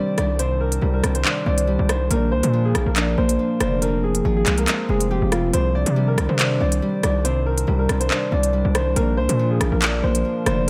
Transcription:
Already playing: harp C3 G3 C4 D4, ambient pad D#3 D4 C5, grand piano D5
0.18 808-style bass C2, harp D#3, grand piano D5, cross-stick, closed hi-hat
0.39 harp C3, grand piano C5, closed hi-hat
0.61 grand piano A#4
0.72 closed hi-hat
0.81 808-style bass C2, harp G3
0.93 grand piano A#4
1.03 808-style bass C2, harp C4, cross-stick, closed hi-hat
1.15 grand piano C5, closed hi-hat
1.24 harp D4, clap
1.46 808-style bass C2, harp C4, grand piano D5
1.58 closed hi-hat
1.67 harp G3
1.79 808-style bass C2
1.89 harp D#3, grand piano C5, cross-stick, closed hi-hat
2.11 808-style bass A#1, harp A#2, ambient pad F3 A#4, grand piano A#4, closed hi-hat
2.32 808-style bass C2, grand piano C5
2.43 808-style bass A#2, closed hi-hat
2.53 harp F3
2.65 grand piano G#4
2.75 808-style bass A#1, harp A#3, cross-stick, closed hi-hat
2.86 808-style bass A#1, grand piano A#4
2.96 harp D4, clap, closed hi-hat
3.18 808-style bass A#1, harp A#3, grand piano C5
3.29 closed hi-hat
3.39 harp F3
3.60 808-style bass F1, harp D3, grand piano C5, cross-stick, closed hi-hat
3.82 harp F2, ambient pad C4 G#4, grand piano A#4, closed hi-hat
4.04 grand piano G#4
4.15 closed hi-hat
4.25 808-style bass G#1, harp F3
4.37 grand piano G#4
4.46 808-style bass C2, harp G#3, clap, closed hi-hat
4.58 grand piano A#4, closed hi-hat
4.67 harp C4, clap, closed hi-hat
4.89 808-style bass F1, harp G#3, grand piano G#4
5.00 closed hi-hat
5.11 harp F3, grand piano G4
5.22 808-style bass F1
5.32 harp C3, grand piano F4, cross-stick, closed hi-hat
5.53 808-style bass C2, harp C3, ambient pad D#3 D4 C5, grand piano C5, closed hi-hat
5.75 grand piano D5
5.86 808-style bass C3, closed hi-hat
5.96 harp G3
6.08 grand piano A#4
6.18 808-style bass C2, harp C4, cross-stick, closed hi-hat
6.29 808-style bass C3, grand piano C5
6.39 harp D4, clap, closed hi-hat
6.60 808-style bass C2, harp C4, grand piano D5
6.72 closed hi-hat
6.82 harp G3
7.03 808-style bass C2, harp D#3, grand piano D5, cross-stick, closed hi-hat
7.24 harp C3, grand piano C5, closed hi-hat
7.46 grand piano A#4
7.58 closed hi-hat
7.67 808-style bass C2, harp G3
7.79 grand piano A#4
7.89 808-style bass C2, harp C4, cross-stick, closed hi-hat
8.00 grand piano C5, closed hi-hat
8.10 harp D4, clap
8.32 808-style bass C2, harp C4, grand piano D5
8.43 closed hi-hat
8.53 harp G3
8.65 808-style bass C2
8.75 harp D#3, grand piano C5, cross-stick, closed hi-hat
8.96 808-style bass A#1, harp A#2, ambient pad F3 A#4, grand piano A#4, closed hi-hat
9.17 808-style bass C2, grand piano C5
9.29 808-style bass A#2, closed hi-hat
9.39 harp F3
9.51 grand piano G#4
9.61 808-style bass A#1, harp A#3, cross-stick, closed hi-hat
9.72 808-style bass A#1, grand piano A#4
9.82 harp D4, clap, closed hi-hat
10.03 808-style bass A#1, harp A#3, grand piano C5
10.15 closed hi-hat
10.25 harp F3
10.46 808-style bass F1, harp D3, grand piano C5, cross-stick, closed hi-hat

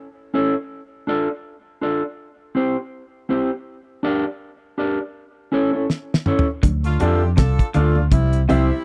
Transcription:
0.34 clean electric guitar C#4 E4 A4 C#5
1.07 clean electric guitar D4 F4 A4 D5
1.81 clean electric guitar D4 F4 A4 D5
2.55 clean electric guitar C4 E4 G4 C5
3.29 clean electric guitar C4 E4 G4 C5
4.03 clean electric guitar D4 G4 A#4 D5
4.78 clean electric guitar D4 G4 A#4 D5
5.52 clean electric guitar C#4 E4 A4 C#5
5.73 clean electric guitar C#4 E4 A4 C#5
5.90 snare
6.14 snare
6.26 clean electric guitar C#4 E4 A4 C#5, mid tom
6.39 floor tom
6.63 fingered electric bass D2, clean electric guitar D3, kick, closed hi-hat, low conga
6.84 horn section A3 D4 F4, closed hi-hat
7.00 fingered electric bass F2, clean electric guitar F3 D4 F4 A4 D5, horn section C4 E4 G4, upright piano D4 F4 A4 D5, closed hi-hat, low conga
7.37 fingered electric bass C2, clean electric guitar C3, horn section D4 F4 A4, kick, snare, closed hi-hat
7.59 kick, closed hi-hat
7.74 fingered electric bass D2, clean electric guitar D3 D4 F4 A4 D5, horn section A3 D4 F4, upright piano D4 F4 A4 D5, closed hi-hat
7.96 high conga
8.11 fingered electric bass C2, clean electric guitar C3, horn section G3 C4 E4, kick, closed hi-hat, low conga
8.33 closed hi-hat
8.49 fingered electric bass C2, clean electric guitar C3 C4 E4 G4 C5, horn section G3 C4 E4, upright piano E4 G4 C5 E5, closed hi-hat, low conga

